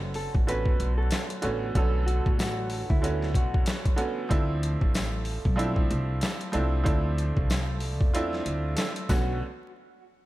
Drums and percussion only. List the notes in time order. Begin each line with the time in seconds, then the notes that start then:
0.14 open hi-hat
0.35 kick
0.48 closed hi-hat
0.66 kick
0.80 closed hi-hat
1.11 snare, closed hi-hat, tambourine
1.30 closed hi-hat
1.42 closed hi-hat
1.75 kick, closed hi-hat
2.08 closed hi-hat
2.26 kick
2.39 snare, closed hi-hat, tambourine
2.70 open hi-hat
2.90 kick
3.04 closed hi-hat
3.22 snare
3.34 kick, closed hi-hat
3.54 kick
3.66 snare, closed hi-hat, tambourine
3.85 kick, closed hi-hat
3.98 closed hi-hat
4.31 kick, closed hi-hat
4.63 closed hi-hat
4.81 kick
4.94 snare, closed hi-hat, tambourine
5.25 open hi-hat
5.45 kick
5.59 closed hi-hat
5.76 kick
5.91 closed hi-hat
6.21 snare, closed hi-hat, tambourine
6.41 closed hi-hat
6.53 closed hi-hat
6.86 kick, closed hi-hat
7.18 closed hi-hat
7.37 kick
7.50 snare, closed hi-hat, tambourine
7.80 open hi-hat
8.01 kick
8.14 closed hi-hat
8.33 snare
8.46 closed hi-hat
8.77 snare, closed hi-hat, tambourine
8.96 closed hi-hat
9.09 kick, snare, tambourine